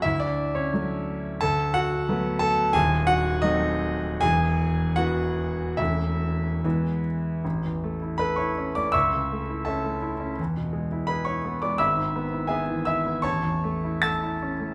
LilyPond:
<<
  \new Staff \with { instrumentName = "Grand piano" } { \time 2/4 \key d \lydian \tempo 4 = 82 <e' e''>16 <d' d''>8 <cis' cis''>16 r4 | \key a \major <a' a''>8 <fis' fis''>4 <a' a''>8 | <gis' gis''>8 <fis' fis''>8 <dis' dis''>4 | <gis' gis''>4 <fis' fis''>4 |
<e' e''>4. r8 | r4 <b' b''>16 <cis'' cis'''>8 <d'' d'''>16 | <e'' cis''' e'''>4 <a' e'' a''>4 | r4 <b' b''>16 <cis'' cis'''>8 <d'' d'''>16 |
<e'' b'' e'''>4 <gis' e'' gis''>8 <e'' e'''>8 | <cis'' a'' cis'''>4 <a'' e''' a'''>4 | }
  \new Staff \with { instrumentName = "Grand piano" } { \time 2/4 \key d \lydian d,4 <fis a d'>4 | \key a \major d,4 <fis a b>4 | <dis,, dis,>4 <fis a bis>4 | <e,, e,>4 <e b>4 |
<e,, e, e a cis'>4 <e, e gis b>4 | a,,16 e,16 a16 e'16 a'16 e'16 cis'16 a16 | cis,16 cis16 a16 e'16 cis'16 a16 e'16 cis'16 | e,16 b,16 gis16 e'16 gis'16 e'16 b16 gis16 |
gis,,16 gis,16 b16 e'16 b16 e16 e'16 b16 | a,,16 e,16 a16 e'16 a'16 e'16 cis'16 a16 | }
>>